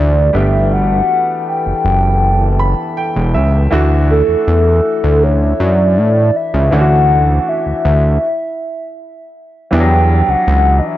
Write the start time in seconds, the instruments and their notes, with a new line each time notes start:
Already playing: analog synth bass D2, grand piano E3 A3 D4 E4 F#4, french horn section E3 E4 E5, soft synth lead D5
0.33 analog synth bass G1, grand piano G3 A3 B3 D4 G4, french horn section B3 A4, soft synth lead E5
0.73 soft synth lead F#5
1.48 soft synth lead G5
1.66 analog synth bass F#1
1.85 analog synth bass F#1
2.60 grand piano B5
2.97 grand piano G5
3.16 analog synth bass E1
3.34 analog synth bass C#2, grand piano E5
3.71 analog synth bass D2, grand piano E3 A3 D4 E4 F#4, french horn section E4 E5
4.11 soft synth lead A4
4.29 analog synth bass E2
4.48 analog synth bass E2
5.04 analog synth bass D2
5.24 soft synth lead C#5
5.60 analog synth bass F#2, soft synth lead D5
5.98 analog synth bass A2
6.36 soft synth lead E5
6.54 analog synth bass C#2
6.71 analog synth bass D2, grand piano E3 A3 C#4 D4 E4, french horn section F#4, soft synth lead F#5
6.80 grand piano F#4
7.49 soft synth lead E5
7.66 analog synth bass D2
7.85 analog synth bass D2
9.71 analog synth bass E2, grand piano E3 G3 B3 D4 E4, french horn section E3 D4 E4, soft synth lead G5
9.80 grand piano F#3
10.29 analog synth bass C#2, soft synth lead F#5
10.47 analog synth bass C#2
10.79 soft synth lead D#5
10.86 soft synth lead E5